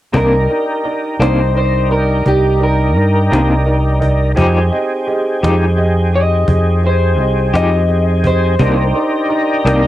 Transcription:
0.13 fingered electric bass C2, clean electric guitar C3 D#3 A#3 D4, tonewheel organ D4 D#4 G4 A#4, grand piano D#4 A#4 D5, cajon bass
0.17 clean electric guitar A#4
0.49 grand piano D#4 A#4 D5, cajon slap
0.84 grand piano D#4 A#4 D5, cajon slap
1.19 fingered electric bass C2, clean electric guitar C3 D#3 A#3 D4 C5, grand piano D#4 A#4 D5, cajon slap
1.54 grand piano D#4 A#4 D5, cajon slap
1.58 clean electric guitar C5
1.89 grand piano D#4 A#4 D5, clean electric guitar A#4, cajon slap
2.25 fingered electric bass C2, grand piano D#4 A#4 D5, clean electric guitar G4, cajon bass, cajon slap
2.59 grand piano D#4 A#4 D5, clean electric guitar A#4, cajon slap
2.95 fingered electric bass G2, grand piano D#4 A#4 D5, cajon slap
3.30 fingered electric bass C2, clean electric guitar C3 D#3 A#3 D4, grand piano D#4 A#4 D#5, cajon slap
3.66 grand piano D#4 A#4 D5, cajon slap
4.00 grand piano D#4 A#4 D5, cajon bass
4.35 fingered electric bass F2, clean electric guitar F3 G#3 D#4 G4, tonewheel organ C4 D#4 G4 G#4, grand piano G4 G#4 D#5, cajon bass
4.71 grand piano G4 G#4 D#5, cajon slap
5.07 grand piano G4 G#4 D#5, cajon slap
5.42 fingered electric bass F2, clean electric guitar F3 G#3 D#4 G4, grand piano G4 G#4 D#5, cajon slap
5.77 grand piano G4 G#4 D#5, cajon slap
6.13 grand piano G4 G#4 D#5, clean electric guitar D#5, cajon slap
6.47 fingered electric bass F2, grand piano G4 G#4 D#5, cajon bass
6.82 grand piano G4 G#4 D#5, cajon slap
6.87 clean electric guitar C5
7.18 fingered electric bass C2, grand piano G4 G#4 D#5, cajon slap
7.53 fingered electric bass F2, clean electric guitar F3 G#3 D#4 G4 D#5, grand piano G4 G#4 D#5, cajon slap
7.88 grand piano G4 G#4 D#5, cajon slap
8.23 grand piano G4 G#4 D#5, clean electric guitar C5, cajon bass
8.59 fingered electric bass C2, clean electric guitar C3 D#3 A#3 D4, tonewheel organ D4 D#4 G4 A#4, grand piano D#4 A#4 D5, cajon bass
8.95 grand piano D#4 A#4 D5, cajon slap
9.28 grand piano D#4 A#4 D5, cajon slap
9.64 fingered electric bass C2, clean electric guitar C3 D#3 A#3 D4, grand piano D#4 A#4 D5, cajon slap

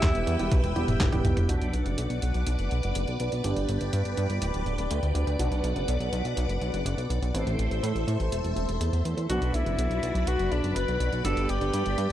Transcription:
Already playing: grand piano G3 B3 E4 G4, alto saxophone E4, string machine B4 E5 G5 E6
0.03 analog synth bass E2, kick, snare, clap, closed hi-hat
0.15 analog synth bass E1, closed hi-hat
0.27 analog synth bass E2, closed hi-hat
0.39 analog synth bass E1, grand piano G3 B3 E4 G4, closed hi-hat
0.51 analog synth bass B1, kick, closed hi-hat, high tom
0.64 analog synth bass E1, closed hi-hat, high tom
0.76 analog synth bass E1, grand piano G3 B3 E4 G4, closed hi-hat
0.88 analog synth bass E1, closed hi-hat, mid tom
1.00 analog synth bass E1, kick, snare, clap, closed hi-hat, mid tom
1.12 analog synth bass E1, grand piano G3 B3 E4 G4, kick, closed hi-hat, mid tom
1.25 analog synth bass B1, closed hi-hat, mid tom
1.37 analog synth bass E1, closed hi-hat, mid tom
1.49 analog synth bass B1, grand piano B2 F#3 B3 D4 F#4, string machine B4 D5 F#5 D6, closed hi-hat
1.61 analog synth bass B1, closed hi-hat
1.73 analog synth bass B1, closed hi-hat
1.86 analog synth bass F#1, closed hi-hat
1.98 analog synth bass B1, closed hi-hat
2.10 analog synth bass B1, closed hi-hat
2.22 analog synth bass B1, closed hi-hat
2.34 analog synth bass B1, closed hi-hat
2.47 analog synth bass B1, closed hi-hat
2.59 analog synth bass F#1, closed hi-hat
2.71 analog synth bass B1, closed hi-hat
2.83 analog synth bass F#1, closed hi-hat
2.95 analog synth bass F#1, closed hi-hat
3.08 analog synth bass B1, closed hi-hat
3.20 analog synth bass B1, closed hi-hat
3.32 analog synth bass B1, closed hi-hat
3.44 analog synth bass G1, grand piano G2 G3 B3 D4 G4, string machine G5, closed hi-hat
3.56 analog synth bass G1, closed hi-hat
3.69 analog synth bass G1, closed hi-hat
3.81 analog synth bass G1, closed hi-hat
3.93 analog synth bass G2, closed hi-hat
4.05 analog synth bass G1, closed hi-hat
4.17 analog synth bass G2, closed hi-hat
4.30 analog synth bass G1, closed hi-hat
4.42 analog synth bass D1, closed hi-hat
4.54 analog synth bass D1, closed hi-hat
4.66 analog synth bass D1, closed hi-hat
4.78 analog synth bass D1, closed hi-hat
4.91 analog synth bass D2, closed hi-hat
5.03 analog synth bass D2, closed hi-hat
5.15 analog synth bass D2, closed hi-hat
5.27 analog synth bass D2, closed hi-hat
5.39 analog synth bass B1, grand piano B2 F#3 B3 D4 F#4, string machine B4 F#5, closed hi-hat
5.51 analog synth bass B1, closed hi-hat
5.64 analog synth bass B1, closed hi-hat
5.76 analog synth bass F#1, closed hi-hat
5.88 analog synth bass B1, closed hi-hat
6.00 analog synth bass B1, closed hi-hat
6.12 analog synth bass B1, closed hi-hat
6.25 analog synth bass B1, closed hi-hat
6.37 analog synth bass B1, closed hi-hat
6.49 analog synth bass F#1, closed hi-hat
6.61 analog synth bass B1, closed hi-hat
6.73 analog synth bass F#1, closed hi-hat
6.85 analog synth bass F#1, closed hi-hat
6.98 analog synth bass B1, closed hi-hat
7.10 analog synth bass B1, closed hi-hat
7.22 analog synth bass B1, closed hi-hat
7.34 analog synth bass A1, grand piano A2 E3 A3 C4 E4, string machine A4 C5 E5 C6, closed hi-hat
7.46 analog synth bass A1, closed hi-hat
7.59 analog synth bass A1, closed hi-hat
7.71 analog synth bass A1, closed hi-hat
7.83 analog synth bass A2, closed hi-hat
7.95 analog synth bass A1, closed hi-hat
8.08 analog synth bass A2, closed hi-hat
8.20 analog synth bass A1, closed hi-hat
8.32 analog synth bass E1, closed hi-hat
8.44 analog synth bass E1, closed hi-hat
8.56 analog synth bass E1, closed hi-hat
8.68 analog synth bass E1, closed hi-hat
8.81 analog synth bass E2, closed hi-hat
8.93 analog synth bass E2, closed hi-hat
9.05 analog synth bass E2, closed hi-hat
9.17 analog synth bass E2, closed hi-hat
9.29 analog synth bass B1, grand piano B2 F#3 B3 D4 F#4, string machine F#4 B4 D5 B5, alto saxophone F#4, closed hi-hat
9.42 analog synth bass B1, closed hi-hat
9.54 analog synth bass B1, alto saxophone E4, closed hi-hat
9.66 analog synth bass F#1, closed hi-hat
9.78 analog synth bass B1, closed hi-hat
9.90 analog synth bass B1, closed hi-hat
10.03 analog synth bass B1, closed hi-hat
10.15 analog synth bass B1, closed hi-hat
10.27 analog synth bass B1, alto saxophone F#4, closed hi-hat
10.39 analog synth bass F#1, closed hi-hat
10.52 analog synth bass B1, alto saxophone D4, closed hi-hat
10.64 analog synth bass F#1, closed hi-hat
10.76 analog synth bass F#1, alto saxophone B4, closed hi-hat
10.88 analog synth bass B1, closed hi-hat
11.00 analog synth bass B1, closed hi-hat
11.12 analog synth bass B1, closed hi-hat
11.24 analog synth bass G1, grand piano G2 G3 B3 D4 G4, string machine G4, alto saxophone A4, closed hi-hat
11.37 analog synth bass G1, closed hi-hat
11.49 analog synth bass G1, alto saxophone G4, closed hi-hat
11.61 analog synth bass G1, closed hi-hat
11.73 analog synth bass G2, closed hi-hat
11.86 analog synth bass G1, closed hi-hat
11.98 analog synth bass G2, closed hi-hat

